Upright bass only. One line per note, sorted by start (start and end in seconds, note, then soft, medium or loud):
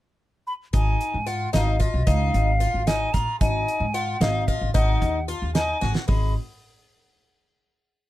0.74 0.94 G#1 medium
1.14 1.45 G#2 medium
1.54 1.84 G#1 medium
1.94 2.04 B1 medium
2.07 2.28 C#2 medium
2.34 2.65 G#1 medium
2.74 3.05 G#1 medium
3.14 3.24 A1 medium
3.41 3.62 G#1 medium
3.80 4.11 G#2 medium
4.21 4.51 G#1 medium
4.61 4.72 G#1 medium
4.75 4.95 G#1 medium
5.02 5.32 D#2 medium
5.42 5.72 D#2 medium
5.82 5.92 G#1 medium
6.09 6.34 G#1 medium